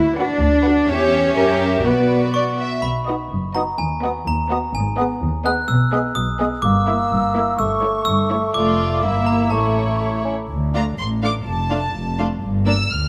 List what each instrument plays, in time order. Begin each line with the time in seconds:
Already playing: double bass section D2, cello section E4
0.17 cello section D4, viola section F#4, violin section B4 F#5
0.40 double bass section D2
0.64 viola section F#4, violin section B4 F#5
0.88 double bass section E2, cello section C#4, viola section G4, violin section C#5 E5
1.36 double bass section F#2, viola section G4, violin section A#4 E5
1.85 double bass section B1, cello section B3, viola section F#4, violin section B4 D5
2.34 violin section D5, glockenspiel C#6
2.59 violin section E5
2.82 double bass section B1, cello section B2, glockenspiel B5
3.07 bassoon B3, viola section D#4, violin section F#4 D#5, flute section D#6
3.31 double bass section F#1, cello section F#2
3.55 bassoon B3, viola section D#4, violin section F#4 D#5, glockenspiel A#5, flute section D#6
3.78 double bass section D#2, cello section D#2, glockenspiel G#5
4.03 bassoon B3, viola section B3, violin section F#4 D#5, flute section D#6
4.26 double bass section D#2, cello section D#2, glockenspiel A#5
4.50 viola section B3, bassoon B3, violin section F#4 D#5, flute section D#6
4.74 double bass section G#1, cello section G#2, glockenspiel G#5
4.97 viola section B3, bassoon B3, violin section G#4 D#5, flute section D#6
5.21 double bass section D#2, cello section D#2
5.44 viola section B3, bassoon B3, violin section G#4 D#5, flute section D#6, glockenspiel F#6
5.68 double bass section B1, cello section B2, glockenspiel E6
5.92 bassoon G#3, viola section B3, violin section G#4 D#5, flute section D#6
6.15 double bass section B1, cello section B2, glockenspiel D#6
6.39 bassoon G#3, viola section B3, violin section G#4 D#5, flute section D#6
6.62 double bass section G1, cello section G2, bassoon A#3, glockenspiel D6, flute section E6
6.88 viola section A#3, violin section E4 E5
7.11 double bass section G1, cello section G2
7.35 viola section A#3, violin section E4 E5
7.58 double bass section G1, cello section G2, bassoon A3, flute section C#6, glockenspiel E6
7.83 viola section A3, violin section E4 C#5
8.05 double bass section G1, cello section G2, glockenspiel E6
8.31 viola section A3, violin section E4 C#5
8.54 double bass section F1, cello section F2, viola section A3, violin section F4 D5, flute section D6, glockenspiel D6
9.02 double bass section G1, cello section G2, bassoon A#3, viola section A#3, violin section E4 E5, flute section E6
9.26 glockenspiel A#5
9.50 double bass section A1, cello section A2, bassoon A3, viola section A3, violin section E4 C#5, glockenspiel A5, flute section C#6
10.01 bassoon A3
10.25 bassoon C#4
10.49 cello section D2, double bass section D2
10.74 viola section A3 D4, violin section F4 F5 A#5
10.98 double bass section A1, cello section A2, violin section C6
11.23 viola section A3 D4, violin section F4 F5 D6
11.46 double bass section F1, cello section F2, violin section A5
11.70 viola section A3 D4, violin section F4 F5
11.94 double bass section F1, cello section F2
12.18 viola section A3 D4, violin section F4 F5
12.42 double bass section G1, cello section G2
12.66 viola section A#3 D4, violin section A#4 D5 E6
12.90 double bass section D2, cello section D2, violin section F6